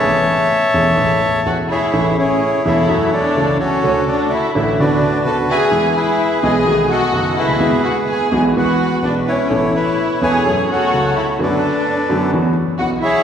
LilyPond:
<<
  \new Staff \with { instrumentName = "Bandoneon" } { \time 4/4 \key a \major \tempo 4 = 127 << { a''2. fis''8 e''8~ | e''8 cis''4 e''4 d''4 cis''8~ | cis''8 d''8 e''8 e''8 d''4 a''8 gis''8~ | gis''8 e''4 gis''4 fis''4 e''8~ |
e''8 fis''8 gis''8 gis''8 fis''4 d''8 cis''8~ | cis''8 e''4 gis''4 fis''4 e''8 | d''2 r4 fis''8 e''8 | } \\ { <cis'' e''>2. r8 <gis' cis''>8~ | <gis' cis''>8 <e' gis'>4 <a' cis''>4 a'4 <fis' a'>8~ | <fis' a'>4. r8 <fis' b'>4. <b' e''>8~ | <b' e''>8 <gis' b'>4 dis''4 <a' dis''>4 <gis' b'>8~ |
<gis' b'>4. r8 b'4. e'8~ | e'8 <b' cis''>4 cis''4 <a' cis''>4. | <a' b'>2 r4. <gis' cis''>8 | } >> }
  \new Staff \with { instrumentName = "Violin section" } { \time 4/4 \key a \major r2. fis'8 e'8~ | e'8 cis'4 e'4 d'4 cis'8~ | cis'8 d'8 e'8 e'8 d'4 a'8 gis'8~ | gis'8 e'4 gis'4 fis'4 e'8~ |
e'8 fis'8 gis'8 gis'8 fis'4 d'8 cis'8~ | cis'8 e'4 gis'4 fis'4 e'8 | d'2 r4 fis'8 e'8 | }
  \new Staff \with { instrumentName = "Grand piano" } { \clef bass \time 4/4 \key a \major <a,, a, e a cis' gis'>8 r4 <e,, e, e a cis' gis'>8 <a,, a, e a cis' gis'>8 r8 <e,, e, e a cis' gis'>8 r8 | <a,, a, e a cis' gis'>8 r4 <e,, e, e a cis' gis'>8 <fis, e fis a cis' fis'>8 r8 <cis, cis e a cis' fis'>8 r8 | <d, d a cis' fis'>8 r4 <a,, a, d a cis' fis'>8 <d, d b cis' fis'>8 r8 <d, d b cis' fis'>8 r8 | <e, e gis b gis'>8 r4 <b,, b, e gis b gis'>8 <b,, b, dis a b fis'>8 r8 <fis,, fis, dis a b fis'>8 r32 cis,32 d,32 dis,32 |
<e, e gis b fis'>8 r4 <b,, b, e gis b fis'>8 <e, e gis b fis'>8 r8 <b,, b, e gis b fis'>8 r8 | <a,, a, e b cis' a'>8 r4 <e,, e, e b cis' a'>8 <fis, fis a cis' gis'>8 r8 <cis, cis fis a cis' gis'>8 r8 | <fis, d fis a b fis'>8 r4 <fis, d fis a b fis'>8 <e, e fis b fis'>8 r8 <b,, b, e fis b fis'>8 r8 | }
>>